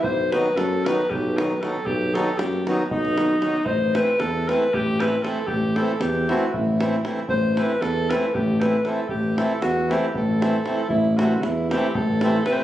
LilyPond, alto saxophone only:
\new Staff \with { instrumentName = "Alto saxophone" } { \time 7/8 \tempo 4 = 116 c''8 b'8 a'8 b'8 g'8 b'8 a'8 | g'8 a'8 g'8 r8 dis'4. | c''8 b'8 a'8 b'8 g'8 b'8 a'8 | g'8 a'8 g'8 fis'8 e'4 r8 |
c''8 b'8 a'8 b'8 g'8 b'8 a'8 | g'8 a'8 fis'8 g'8 a'4. | e'8 fis'8 e'8 g'8 a'4 b'32 c''32 b'16 | }